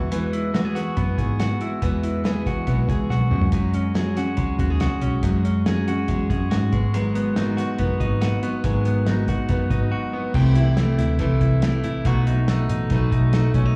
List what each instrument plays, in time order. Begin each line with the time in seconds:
Already playing: picked electric bass E2, clean electric guitar E3 B3 F#4, steel-string acoustic guitar G#3 B3 F#4
0.11 steel-string acoustic guitar E3 G#3 B3 F#4, clean electric guitar E3, closed hi-hat
0.33 clean electric guitar E4, closed hi-hat
0.54 steel-string acoustic guitar E3 G#3 B3 F#4, clean electric guitar F#4, snare, closed hi-hat
0.65 clean electric guitar G#4
0.75 steel-string acoustic guitar G#3 B3 F#4, clean electric guitar F#4, snare, closed hi-hat
0.97 picked electric bass F#2, steel-string acoustic guitar E3 G#3 B3 F#4, clean electric guitar B3, kick, closed hi-hat
1.18 picked electric bass G#2, steel-string acoustic guitar G#3 B3 F#4, clean electric guitar G#4, kick, closed hi-hat
1.40 clean electric guitar F#4, snare, closed hi-hat
1.60 steel-string acoustic guitar G#3 B3 F#4, clean electric guitar E4, closed hi-hat
1.82 picked electric bass E2, steel-string acoustic guitar E3 G#3 B3 F#4, clean electric guitar E3, kick, closed hi-hat
2.03 clean electric guitar E4, closed hi-hat
2.24 steel-string acoustic guitar E3 G#3 B3 F#4, clean electric guitar G#4, snare, closed hi-hat
2.45 steel-string acoustic guitar G#3 B3 F#4, clean electric guitar F#4, kick, closed hi-hat
2.67 picked electric bass B1, steel-string acoustic guitar E3 G#3 B3 F#4, clean electric guitar B3, kick, closed hi-hat
2.88 picked electric bass C#2, steel-string acoustic guitar G#3 B3 F#4, clean electric guitar G#4, kick, closed hi-hat
3.10 picked electric bass B1, clean electric guitar F#4, snare
3.21 high tom
3.30 clean electric guitar F#2, picked electric bass F#2, steel-string acoustic guitar G#3 C#4 F#4, mid tom
3.41 floor tom
3.52 clean electric guitar F#2, steel-string acoustic guitar F#3 G#3 C#4 F#4, kick, closed hi-hat
3.74 clean electric guitar C#4, closed hi-hat
3.94 steel-string acoustic guitar F#3 G#3 C#4 F#4, clean electric guitar G#4, snare, closed hi-hat
4.15 steel-string acoustic guitar G#3 C#4 F#4, clean electric guitar F#4, snare, closed hi-hat
4.36 picked electric bass C#2, steel-string acoustic guitar F#3 G#3 C#4 F#4, clean electric guitar G#3, kick, closed hi-hat
4.58 picked electric bass D#2, steel-string acoustic guitar G#3 C#4 F#4, clean electric guitar F#4, kick, closed hi-hat
4.70 clean electric guitar G#4
4.80 picked electric bass C#2, clean electric guitar F#4, snare, closed hi-hat
5.02 picked electric bass B1, steel-string acoustic guitar G#3 C#4 F#4, clean electric guitar C#4, closed hi-hat
5.23 picked electric bass F#2, clean electric guitar F#2, steel-string acoustic guitar F#3 G#3 C#4 F#4, kick, closed hi-hat
5.45 clean electric guitar C#4, closed hi-hat
5.66 steel-string acoustic guitar F#3 G#3 C#4 F#4, clean electric guitar G#4, snare, closed hi-hat
5.88 steel-string acoustic guitar G#3 C#4 F#4, clean electric guitar F#4, closed hi-hat
6.08 picked electric bass E2, steel-string acoustic guitar F#3 G#3 C#4 F#4, clean electric guitar G#3, kick, closed hi-hat
6.30 picked electric bass F#2, steel-string acoustic guitar G#3 C#4 F#4, clean electric guitar G#4, kick, closed hi-hat
6.51 picked electric bass G#2, clean electric guitar F#4, snare, closed hi-hat
6.72 picked electric bass G#1, steel-string acoustic guitar F#3 B3 F#4, clean electric guitar G#3, kick, closed hi-hat
6.94 steel-string acoustic guitar G#2 D#3 F#3 B3 F#4, clean electric guitar G#3, closed hi-hat
7.15 clean electric guitar B3, closed hi-hat
7.36 steel-string acoustic guitar G#2 D#3 F#3 B3 F#4, clean electric guitar D#4, snare, closed hi-hat
7.57 steel-string acoustic guitar F#3 B3 F#4, clean electric guitar F#4, snare, closed hi-hat
7.79 picked electric bass F#1, steel-string acoustic guitar D#3 F#3 B3 F#4, clean electric guitar B3, kick, closed hi-hat
8.00 picked electric bass G#1, steel-string acoustic guitar F#3 B3 F#4, clean electric guitar D#4, kick, closed hi-hat
8.21 clean electric guitar F#4, snare, closed hi-hat
8.43 steel-string acoustic guitar F#3 B3 F#4, clean electric guitar B3, closed hi-hat
8.64 picked electric bass G#1, steel-string acoustic guitar G#2 D#3 F#3 B3 F#4, clean electric guitar G#3, kick, closed hi-hat
8.85 clean electric guitar B3, closed hi-hat
9.06 steel-string acoustic guitar G#2 D#3 F#3 B3 F#4, clean electric guitar D#4, snare, closed hi-hat
9.28 steel-string acoustic guitar F#3 B3 F#4, clean electric guitar F#4, kick, snare, closed hi-hat
9.49 picked electric bass F#1, steel-string acoustic guitar D#3 F#3 B3 F#4, clean electric guitar B3, kick, closed hi-hat
9.70 picked electric bass G#1, steel-string acoustic guitar F#3 B3 F#4, clean electric guitar D#4, kick, closed hi-hat
9.92 clean electric guitar F#4
10.13 steel-string acoustic guitar F#3 B3 F#4, clean electric guitar B3
10.34 picked electric bass C2, clean electric guitar C3 G4, steel-string acoustic guitar C3 E3 A3 E4 G4, kick, crash
10.55 steel-string acoustic guitar A3 E4 G4, clean electric guitar E4, closed hi-hat
10.77 steel-string acoustic guitar E3 A3 E4 G4, clean electric guitar A3, snare, closed hi-hat
10.98 picked electric bass D2, clean electric guitar E4, snare, closed hi-hat
11.19 picked electric bass C2, steel-string acoustic guitar C3 E3 A3 E4 G4, clean electric guitar A3, kick, closed hi-hat
11.41 picked electric bass C2, clean electric guitar E4, kick, closed hi-hat
11.62 steel-string acoustic guitar E3 A3 E4 G4, clean electric guitar A3, snare, closed hi-hat
11.83 picked electric bass A1, clean electric guitar E4, closed hi-hat
12.05 picked electric bass B1, steel-string acoustic guitar B2 F#3 A3 D#4 F#4, clean electric guitar B2 F#4, kick, closed hi-hat
12.26 steel-string acoustic guitar A3 D#4 F#4, clean electric guitar D#4, closed hi-hat
12.48 steel-string acoustic guitar F#3 A3 D#4 F#4, clean electric guitar A3, snare, closed hi-hat
12.69 picked electric bass A1, clean electric guitar D#4, closed hi-hat
12.90 picked electric bass B1, steel-string acoustic guitar B2 F#3 A3 D#4 F#4, clean electric guitar A3, kick, closed hi-hat
13.12 picked electric bass B1, clean electric guitar D#4, kick, closed hi-hat
13.33 steel-string acoustic guitar F#3 A3 D#4 F#4, clean electric guitar A3, snare, closed hi-hat
13.54 picked electric bass B1, steel-string acoustic guitar A3 D#4 F#4, clean electric guitar C#4, kick, closed hi-hat
13.66 clean electric guitar D#4